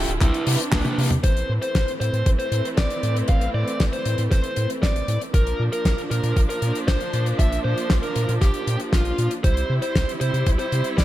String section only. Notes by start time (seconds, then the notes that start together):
Already playing: D3 D4 E4 F4 A4
0.21 E3 C4 D4
1.24 E3 A3 C4
5.34 F3 A#3 D4
9.45 G3 C4 E4